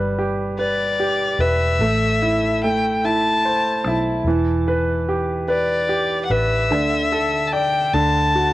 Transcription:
0, 0, Header, 1, 4, 480
1, 0, Start_track
1, 0, Key_signature, 1, "major"
1, 0, Tempo, 818889
1, 1054, Time_signature, 6, 3, 24, 8
1, 5001, End_track
2, 0, Start_track
2, 0, Title_t, "Violin"
2, 0, Program_c, 0, 40
2, 346, Note_on_c, 0, 74, 71
2, 823, Note_on_c, 0, 76, 75
2, 831, Note_off_c, 0, 74, 0
2, 1538, Note_off_c, 0, 76, 0
2, 1545, Note_on_c, 0, 79, 77
2, 1786, Note_on_c, 0, 81, 85
2, 1794, Note_off_c, 0, 79, 0
2, 2320, Note_off_c, 0, 81, 0
2, 3223, Note_on_c, 0, 74, 70
2, 3633, Note_off_c, 0, 74, 0
2, 3663, Note_on_c, 0, 78, 45
2, 3698, Note_on_c, 0, 76, 72
2, 3707, Note_off_c, 0, 78, 0
2, 4378, Note_on_c, 0, 81, 54
2, 4387, Note_off_c, 0, 76, 0
2, 4408, Note_on_c, 0, 79, 77
2, 4417, Note_off_c, 0, 81, 0
2, 4653, Note_on_c, 0, 81, 81
2, 4662, Note_off_c, 0, 79, 0
2, 5001, Note_off_c, 0, 81, 0
2, 5001, End_track
3, 0, Start_track
3, 0, Title_t, "Grand piano"
3, 0, Program_c, 1, 0
3, 0, Control_c, 1, 64, 127
3, 0, Note_on_c, 1, 55, 54
3, 0, Note_on_c, 1, 71, 44
3, 109, Note_on_c, 1, 67, 39
3, 336, Note_off_c, 1, 71, 0
3, 345, Note_on_c, 1, 71, 39
3, 576, Note_off_c, 1, 67, 0
3, 585, Note_on_c, 1, 67, 41
3, 813, Note_off_c, 1, 71, 0
3, 822, Note_on_c, 1, 71, 50
3, 1037, Note_off_c, 1, 55, 0
3, 1045, Note_off_c, 1, 67, 0
3, 1051, Note_off_c, 1, 71, 0
3, 1061, Control_c, 1, 64, 0
3, 1061, Note_on_c, 1, 57, 50
3, 1162, Control_c, 1, 64, 127
3, 1303, Note_on_c, 1, 64, 45
3, 1540, Note_off_c, 1, 57, 0
3, 1548, Note_on_c, 1, 57, 41
3, 1776, Note_off_c, 1, 64, 0
3, 1785, Note_on_c, 1, 64, 46
3, 2024, Note_on_c, 1, 72, 41
3, 2261, Note_off_c, 1, 64, 0
3, 2270, Note_on_c, 1, 64, 48
3, 2477, Note_off_c, 1, 57, 0
3, 2484, Note_off_c, 1, 72, 0
3, 2495, Note_off_c, 1, 64, 0
3, 2502, Control_c, 1, 64, 0
3, 2505, Note_on_c, 1, 52, 53
3, 2591, Control_c, 1, 64, 127
3, 2742, Note_on_c, 1, 71, 47
3, 2982, Note_on_c, 1, 67, 42
3, 3206, Note_off_c, 1, 71, 0
3, 3214, Note_on_c, 1, 71, 45
3, 3445, Note_off_c, 1, 67, 0
3, 3454, Note_on_c, 1, 67, 44
3, 3688, Note_off_c, 1, 71, 0
3, 3696, Note_on_c, 1, 71, 49
3, 3915, Note_off_c, 1, 52, 0
3, 3919, Note_off_c, 1, 67, 0
3, 3927, Note_off_c, 1, 71, 0
3, 3931, Note_on_c, 1, 50, 45
3, 3941, Control_c, 1, 64, 0
3, 4031, Control_c, 1, 64, 127
3, 4175, Note_on_c, 1, 69, 48
3, 4413, Note_on_c, 1, 74, 45
3, 4630, Note_off_c, 1, 50, 0
3, 4639, Note_off_c, 1, 69, 0
3, 4645, Note_off_c, 1, 74, 0
3, 4654, Note_on_c, 1, 50, 55
3, 4660, Control_c, 1, 64, 0
3, 4765, Control_c, 1, 64, 127
3, 4896, Note_on_c, 1, 66, 45
3, 5001, Note_off_c, 1, 50, 0
3, 5001, Note_off_c, 1, 66, 0
3, 5001, End_track
4, 0, Start_track
4, 0, Title_t, "Fingered electric bass"
4, 0, Program_c, 2, 33
4, 0, Note_on_c, 2, 31, 76
4, 791, Note_off_c, 2, 31, 0
4, 813, Note_on_c, 2, 28, 68
4, 1039, Note_off_c, 2, 28, 0
4, 1050, Note_on_c, 2, 33, 74
4, 2250, Note_off_c, 2, 33, 0
4, 2250, Note_on_c, 2, 35, 69
4, 2477, Note_off_c, 2, 35, 0
4, 2486, Note_on_c, 2, 28, 74
4, 3666, Note_off_c, 2, 28, 0
4, 3691, Note_on_c, 2, 33, 69
4, 3935, Note_off_c, 2, 33, 0
4, 3935, Note_on_c, 2, 38, 75
4, 4630, Note_off_c, 2, 38, 0
4, 4652, Note_on_c, 2, 38, 74
4, 5001, Note_off_c, 2, 38, 0
4, 5001, End_track
0, 0, End_of_file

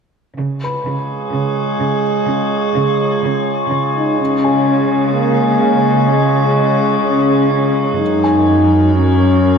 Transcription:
0, 0, Header, 1, 5, 480
1, 0, Start_track
1, 0, Tempo, 476190
1, 387, Time_signature, 4, 2, 24, 8
1, 9657, End_track
2, 0, Start_track
2, 0, Title_t, "Grand piano"
2, 0, Program_c, 0, 0
2, 583, Control_c, 0, 64, 127
2, 639, Note_on_c, 0, 71, 18
2, 646, Note_on_c, 0, 83, 26
2, 2033, Note_off_c, 0, 71, 0
2, 2036, Note_off_c, 0, 83, 0
2, 4247, Control_c, 0, 64, 0
2, 4384, Control_c, 0, 64, 127
2, 4475, Note_on_c, 0, 68, 22
2, 4478, Note_on_c, 0, 80, 34
2, 5651, Note_on_c, 0, 77, 25
2, 5871, Note_off_c, 0, 68, 0
2, 5872, Note_off_c, 0, 80, 0
2, 7059, Note_off_c, 0, 77, 0
2, 8085, Control_c, 0, 64, 0
2, 8281, Control_c, 0, 64, 127
2, 8303, Note_on_c, 0, 80, 36
2, 9657, Note_off_c, 0, 80, 0
2, 9657, End_track
3, 0, Start_track
3, 0, Title_t, "Synth drone"
3, 0, Program_c, 1, 95
3, 392, Note_on_c, 1, 65, 48
3, 393, Note_on_c, 1, 68, 50
3, 394, Note_on_c, 1, 56, 46
3, 395, Note_on_c, 1, 73, 50
3, 4189, Note_off_c, 1, 65, 0
3, 4190, Note_off_c, 1, 56, 0
3, 4190, Note_off_c, 1, 68, 0
3, 4191, Note_off_c, 1, 73, 0
3, 4226, Note_on_c, 1, 68, 49
3, 4227, Note_on_c, 1, 56, 49
3, 4229, Note_on_c, 1, 65, 54
3, 4229, Note_on_c, 1, 73, 50
3, 8026, Note_off_c, 1, 68, 0
3, 8027, Note_off_c, 1, 56, 0
3, 8028, Note_off_c, 1, 65, 0
3, 8028, Note_off_c, 1, 73, 0
3, 8057, Note_on_c, 1, 70, 56
3, 8058, Note_on_c, 1, 54, 55
3, 8058, Note_on_c, 1, 66, 54
3, 8059, Note_on_c, 1, 73, 53
3, 9657, Note_off_c, 1, 54, 0
3, 9657, Note_off_c, 1, 66, 0
3, 9657, Note_off_c, 1, 70, 0
3, 9657, Note_off_c, 1, 73, 0
3, 9657, End_track
4, 0, Start_track
4, 0, Title_t, "French horn section"
4, 0, Program_c, 2, 60
4, 3994, Note_on_c, 2, 63, 44
4, 4214, Note_off_c, 2, 63, 0
4, 4225, Note_on_c, 2, 61, 40
4, 5178, Note_on_c, 2, 58, 48
4, 5186, Note_off_c, 2, 61, 0
4, 6140, Note_on_c, 2, 56, 39
4, 6143, Note_off_c, 2, 58, 0
4, 7102, Note_on_c, 2, 61, 51
4, 7104, Note_off_c, 2, 56, 0
4, 7565, Note_off_c, 2, 61, 0
4, 7578, Note_on_c, 2, 61, 50
4, 7817, Note_off_c, 2, 61, 0
4, 8061, Note_on_c, 2, 63, 66
4, 8984, Note_off_c, 2, 63, 0
4, 9030, Note_on_c, 2, 61, 52
4, 9657, Note_off_c, 2, 61, 0
4, 9657, End_track
5, 0, Start_track
5, 0, Title_t, "Cello section"
5, 0, Program_c, 3, 48
5, 383, Note_on_c, 3, 49, 32
5, 787, Note_off_c, 3, 49, 0
5, 862, Note_on_c, 3, 49, 32
5, 1266, Note_off_c, 3, 49, 0
5, 1338, Note_on_c, 3, 49, 33
5, 1744, Note_off_c, 3, 49, 0
5, 1819, Note_on_c, 3, 49, 36
5, 2225, Note_off_c, 3, 49, 0
5, 2301, Note_on_c, 3, 49, 44
5, 2706, Note_off_c, 3, 49, 0
5, 2778, Note_on_c, 3, 49, 47
5, 3184, Note_off_c, 3, 49, 0
5, 3260, Note_on_c, 3, 49, 46
5, 3665, Note_off_c, 3, 49, 0
5, 3737, Note_on_c, 3, 49, 45
5, 4143, Note_off_c, 3, 49, 0
5, 4221, Note_on_c, 3, 49, 35
5, 8023, Note_off_c, 3, 49, 0
5, 8061, Note_on_c, 3, 42, 40
5, 9657, Note_off_c, 3, 42, 0
5, 9657, End_track
0, 0, End_of_file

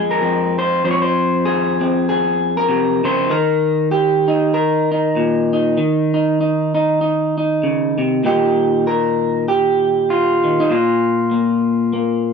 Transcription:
0, 0, Header, 1, 2, 480
1, 0, Start_track
1, 0, Tempo, 616016
1, 653, Time_signature, 4, 2, 24, 8
1, 9608, End_track
2, 0, Start_track
2, 0, Title_t, "Clean electric guitar"
2, 0, Program_c, 0, 27
2, 0, Note_on_c, 0, 41, 70
2, 0, Note_on_c, 0, 56, 46
2, 0, Note_on_c, 0, 68, 95
2, 83, Note_on_c, 0, 70, 87
2, 161, Note_off_c, 0, 41, 0
2, 170, Note_on_c, 0, 41, 64
2, 174, Note_off_c, 0, 68, 0
2, 177, Note_on_c, 0, 60, 47
2, 453, Note_off_c, 0, 70, 0
2, 456, Note_on_c, 0, 72, 98
2, 633, Note_off_c, 0, 56, 0
2, 650, Note_off_c, 0, 41, 0
2, 651, Note_off_c, 0, 72, 0
2, 659, Note_on_c, 0, 41, 71
2, 663, Note_on_c, 0, 72, 88
2, 705, Note_off_c, 0, 72, 0
2, 708, Note_on_c, 0, 73, 83
2, 774, Note_off_c, 0, 73, 0
2, 794, Note_on_c, 0, 72, 101
2, 1130, Note_off_c, 0, 60, 0
2, 1133, Note_on_c, 0, 68, 94
2, 1409, Note_on_c, 0, 60, 61
2, 1615, Note_off_c, 0, 68, 0
2, 1623, Note_off_c, 0, 72, 0
2, 1629, Note_on_c, 0, 68, 92
2, 2000, Note_off_c, 0, 68, 0
2, 2004, Note_on_c, 0, 70, 90
2, 2093, Note_on_c, 0, 48, 65
2, 2366, Note_off_c, 0, 48, 0
2, 2369, Note_on_c, 0, 49, 64
2, 2378, Note_on_c, 0, 72, 97
2, 2552, Note_off_c, 0, 60, 0
2, 2569, Note_off_c, 0, 70, 0
2, 2569, Note_on_c, 0, 51, 70
2, 2575, Note_off_c, 0, 49, 0
2, 2578, Note_on_c, 0, 70, 97
2, 2580, Note_off_c, 0, 41, 0
2, 2580, Note_off_c, 0, 72, 0
2, 3047, Note_off_c, 0, 70, 0
2, 3050, Note_on_c, 0, 67, 84
2, 3334, Note_on_c, 0, 63, 66
2, 3534, Note_off_c, 0, 67, 0
2, 3537, Note_on_c, 0, 70, 88
2, 3827, Note_off_c, 0, 63, 0
2, 3831, Note_on_c, 0, 63, 47
2, 4024, Note_on_c, 0, 46, 64
2, 4307, Note_off_c, 0, 63, 0
2, 4310, Note_on_c, 0, 63, 52
2, 4491, Note_off_c, 0, 51, 0
2, 4500, Note_on_c, 0, 51, 72
2, 4501, Note_off_c, 0, 46, 0
2, 4781, Note_off_c, 0, 63, 0
2, 4784, Note_on_c, 0, 63, 49
2, 4983, Note_off_c, 0, 63, 0
2, 4992, Note_on_c, 0, 63, 49
2, 5247, Note_off_c, 0, 63, 0
2, 5256, Note_on_c, 0, 63, 64
2, 5454, Note_off_c, 0, 63, 0
2, 5463, Note_on_c, 0, 63, 51
2, 5735, Note_off_c, 0, 63, 0
2, 5747, Note_on_c, 0, 63, 43
2, 5948, Note_on_c, 0, 49, 61
2, 6216, Note_off_c, 0, 49, 0
2, 6219, Note_on_c, 0, 48, 62
2, 6400, Note_off_c, 0, 63, 0
2, 6416, Note_off_c, 0, 70, 0
2, 6418, Note_off_c, 0, 51, 0
2, 6419, Note_off_c, 0, 48, 0
2, 6422, Note_on_c, 0, 46, 65
2, 6427, Note_on_c, 0, 51, 47
2, 6433, Note_on_c, 0, 63, 41
2, 6437, Note_on_c, 0, 67, 88
2, 6906, Note_off_c, 0, 67, 0
2, 6913, Note_on_c, 0, 70, 94
2, 7384, Note_off_c, 0, 70, 0
2, 7390, Note_on_c, 0, 67, 90
2, 7872, Note_on_c, 0, 65, 89
2, 8124, Note_off_c, 0, 51, 0
2, 8134, Note_on_c, 0, 51, 47
2, 8240, Note_off_c, 0, 63, 0
2, 8259, Note_on_c, 0, 63, 72
2, 8327, Note_off_c, 0, 46, 0
2, 8336, Note_on_c, 0, 46, 70
2, 8337, Note_off_c, 0, 51, 0
2, 8339, Note_off_c, 0, 65, 0
2, 8342, Note_off_c, 0, 67, 0
2, 8348, Note_on_c, 0, 65, 82
2, 8349, Note_off_c, 0, 63, 0
2, 8816, Note_on_c, 0, 58, 46
2, 9289, Note_off_c, 0, 58, 0
2, 9299, Note_on_c, 0, 58, 49
2, 9608, Note_off_c, 0, 46, 0
2, 9608, Note_off_c, 0, 58, 0
2, 9608, Note_off_c, 0, 65, 0
2, 9608, End_track
0, 0, End_of_file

